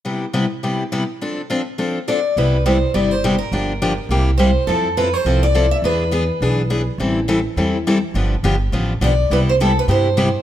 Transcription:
X:1
M:4/4
L:1/8
Q:"Swing" 1/4=208
K:C
V:1 name="Steel-string acoustic guitar"
z8 | z6 d2 | B2 c2 d c2 _B- | _B4- B z c2 |
A2 B c2 d2 e | B6- B z | z8 | z6 d2 |
B c A B c4 |]
V:2 name="Steel-string acoustic guitar"
[C,G,B,EG] z [C,G,B,EG] z [C,G,B,EG] z [C,G,B,EG] z | [F,CDA] z [F,CDA] z [F,CDA] z [F,CDA] z | [C,G,B,EG] z [C,G,B,EG] z [C,G,B,EG] z [C,G,B,EG] z | [D,F,_B,DG] z [D,F,B,DG] z [C,G,B,EG] z [C,G,B,EG] z |
[F,CEA] z [F,CEA] z [F,CEA] z [F,CEA] z | [E,B,D^G] z [E,B,DG] z [E,B,DG] z [E,B,DG] z | [E,G,CEA] z [E,G,CEA] z [E,G,CEA] z [E,G,CEA] z | [D,F,B,DG] z [D,F,B,DG] z [D,F,B,DG] z [D,F,B,DG] z |
[C,G,B,EG] z [C,G,B,EG] z [C,G,B,EG] z [C,G,B,EG] z |]
V:3 name="Upright bass" clef=bass
z8 | z8 | C,,4 G,,,4 | G,,,4 C,,4 |
F,,4 C,,4 | E,,4 B,,,4 | A,,,4 E,,4 | G,,,2 G,,,2 A,,,2 B,,,2 |
C,,4 G,,4 |]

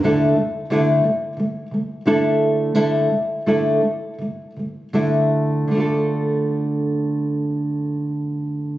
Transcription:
X:1
M:4/4
L:1/8
Q:"Swing 16ths" 1/4=82
K:Dm
V:1 name="Nylon-string guitar"
[D,A,DEA] [D,A,] [D,A,DEA] [D,A,] [D,A,] [D,A,] [D,A,DEA]2 | [D,A,DEA] [D,A,] [D,A,DEA] [D,A,] [D,A,] [D,A,] [D,A,DEA]2 | [D,A,DFA]8 |]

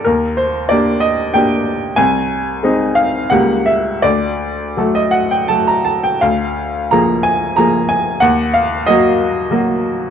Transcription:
X:1
M:3/4
L:1/16
Q:1/4=91
K:Dphr
V:1 name="Upright piano"
B2 c2 d2 e2 g4 | _a6 f2 ^f2 =e2 | d4- d e ^f g a b a g | [K:Ebm] f4 b2 a2 b2 a2 |
g2 f2 e6 z2 |]
V:2 name="Upright piano"
E,,4 [B,DG]4 [B,DG]4 | C,,4 [_A,CE]4 [^C,,G,^A,G]4 | D,,4 [^F,A,A]4 [F,A,A]4 | [K:Ebm] =D,,4 [F,B,A]4 [F,B,A]4 |
E,,4 [G,B,G]4 [G,B,G]4 |]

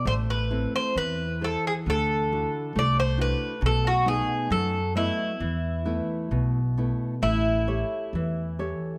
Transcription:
X:1
M:2/4
L:1/16
Q:1/4=67
K:Ephr
V:1 name="Bouzouki"
c B2 c B2 A ^G | A4 d c B2 | A ^F ^G2 A2 E2- | E6 z2 |
E8 |]
V:2 name="Nylon-string guitar"
A,2 [CEA]2 E,2 [EAc]2 | D,2 [DE^F]2 A,2 [DEF]2 | B,,2 [A,B,^D]2 ^F,2 [A,B,^d]2 | E,2 [A,B,E]2 B,,2 [A,B,E]2 |
A,2 [GA^c]2 E,2 [GAc]2 |]
V:3 name="Upright bass" clef=bass
A,,,4 E,,4 | D,,4 C,,4 | B,,,4 ^F,,4 | E,,4 B,,,4 |
A,,,4 E,,4 |]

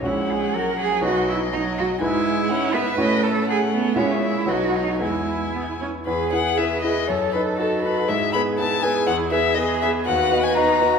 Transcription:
X:1
M:2/4
L:1/16
Q:1/4=120
K:B
V:1 name="Violin"
f8 | d8 | [K:E] g4 f2 e2 | d2 c2 f4 |
e4 d4 | g6 z2 | B2 f2 e2 d2 | c2 B2 A2 B2 |
e2 b2 a2 g2 | f2 e2 d2 e2 | [K:B] f3 g a4 |]
V:2 name="Cello"
E2 G2 A2 G2 | F2 E2 D2 F2 | [K:E] E6 B2- | B2 A2 G2 B,2 |
C2 E2 F2 D2 | E6 z2 | G4 B4 | A4 F4 |
E4 E4- | E4 G4 | [K:B] F4 D2 F2 |]
V:3 name="Grand piano"
[A,,,CFc]8 | [B,,,DFB]8 | [K:E] [G,,EGB]8 | [A,,CFc]8 |
[^A,,EFc]4 [B,,,DFB]4 | [E,,EGB]8 | E,,2 [EGB]2 [EGB]2 [EGB]2 | F,,2 [DAB]2 [DAB]2 [DAB]2 |
G,,2 [B,GB]2 [B,GB]2 [B,GB]2 | E,,2 [B,GB]2 [B,GB]2 [B,GB]2 | [K:B] D,,2 [B,Fd]2 [B,Fd]2 [B,Fd]2 |]
V:4 name="Viola"
G,4 F,4- | F,4 F,4 | [K:E] G,4 C2 B,2 | A,8 |
G,4 F,4 | G,4 B,2 C2 | G8 | A8 |
G8- | G8 | [K:B] B8 |]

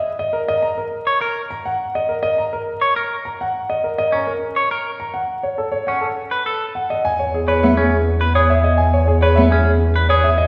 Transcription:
X:1
M:3/4
L:1/16
Q:1/4=103
K:D#phr
V:1 name="Grand piano"
z d A d a A z4 a f | z d A d a A z4 a f | z d A d a A z4 a f | z c =A c f A z4 f d |
[K:E] g c G c e G z3 c e d | g c G c e G z3 c e d |]
V:2 name="Clean electric guitar"
z6 z c A z3 | z6 z c A z3 | z4 C z2 c A z3 | z4 C z2 B =A z3 |
[K:E] z3 B z C z2 B G z2 | z3 B z C z2 B G z2 |]
V:3 name="Cello"
z12 | z12 | z12 | z12 |
[K:E] z4 B, z6 z | z4 B, z6 z |]
V:4 name="Double bass section" clef=bass
z12 | z12 | z12 | z12 |
[K:E] E,,12- | E,,12 |]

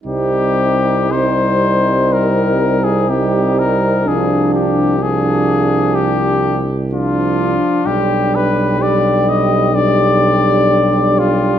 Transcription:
X:1
M:4/4
L:1/16
Q:1/4=63
K:Cm
V:1 name="Cornet"
G4 c4 B3 A G2 B2 | A2 G2 A4 G3 z F4 | G2 =B2 d2 e2 d6 F2 |]
V:2 name="Flugelhorn"
E4 E8 E4 | D4 D6 z2 D4 | G4 G4 G8 |]
V:3 name="Euphonium"
C4 C8 C4 | D4 D6 z2 D4 | D4 D4 D8 |]
V:4 name="Trombone" clef=bass
G,4 G,8 G,4 | F,4 F,6 z2 F,4 | G,4 G,4 G,8 |]
V:5 name="Tuba" clef=bass
C,,16 | C,,12- C,,2 z2 | =B,,,16 |]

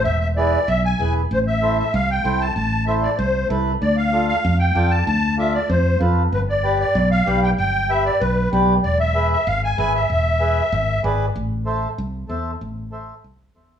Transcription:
X:1
M:4/4
L:1/8
Q:1/4=191
K:Ephr
V:1 name="Accordion"
e e d2 e ^g2 z | [K:Am] c e2 e f g2 a | a2 e d c2 z2 | d f2 f2 g2 a |
a2 e d c2 z2 | B d2 d2 f2 g | g2 e d B2 z2 | d e2 e f ^g g e |
e6 z2 | z8 | z8 |]
V:2 name="Accordion"
z2 [E^GB] z3 [EGB] z | [K:Am] z2 [EAc] z3 [EAc] z | z2 [EAc] z3 [EAB] z | z2 [FAd] z3 [FAd] z |
z2 [FAd] z3 [FAB] z | z2 [GBd] z3 [GBd] z | z2 [GBe] z3 [GBd] z | z2 [^GBe] z3 [GBe] z |
z2 [^GBe] z3 [GBd] z | z2 [Ace] z3 [Ace] z | z2 [Ace] z3 [Ace] z |]
V:3 name="Fingered electric bass" clef=bass
E,,,4 B,,,2 E,,,2 | [K:Am] A,,,4 C,,2 C,,2 | A,,,4 C,,2 C,,2 | D,,4 F,,2 F,,2 |
D,,4 F,,2 F,,2 | G,,,4 B,,,2 B,,,2 | G,,,4 B,,,2 B,,,2 | E,,,4 ^G,,,2 G,,,2 |
E,,,4 ^G,,,2 G,,,2 | A,,,4 C,,2 E,,2 | A,,,4 C,,2 E,,2 |]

